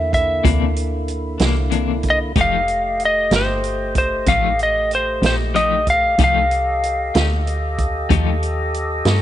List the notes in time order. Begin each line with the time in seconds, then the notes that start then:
Already playing: E2 D3 A#3 E4 E5
0.13 E5, kick, closed hi-hat
0.43 D2 C3 E3 A#3 D4, kick, closed hi-hat
0.76 closed hi-hat
1.08 closed hi-hat
1.38 C2 E3 A#3 D4, snare, closed hi-hat
1.70 C3 E3 A#3 D4, closed hi-hat
2.03 kick, closed hi-hat
2.10 D#5
2.36 F1 F3 A3 D#4 G4 D#5, kick, closed hi-hat
2.41 F5
2.68 closed hi-hat
3.00 closed hi-hat
3.05 D#5
3.31 G1 A3 D#4 G4, snare, closed hi-hat
3.36 C5
3.64 closed hi-hat
3.95 C5, kick, closed hi-hat
4.26 A1 F3 A3 D#4 G4 F5, kick, closed hi-hat
4.59 D#5, closed hi-hat
4.91 C5, closed hi-hat
5.22 A#1 A3 D#4 G4, snare, closed hi-hat
5.26 C5
5.54 F3 A3 D#4 G4 D#5, closed hi-hat
5.87 F5, kick, closed hi-hat
6.17 C2 F3 A3 D#4 G4 A4 D#5, kick, closed hi-hat
6.24 F5
6.51 closed hi-hat
6.84 closed hi-hat
7.14 D2 A3 D#4 G4, snare, closed hi-hat
7.47 closed hi-hat
7.78 kick, closed hi-hat
8.09 D#2 F3 A3 D#4 G4, kick, closed hi-hat
8.43 closed hi-hat
8.74 closed hi-hat
9.05 G2 A3 D#4 G4, snare, closed hi-hat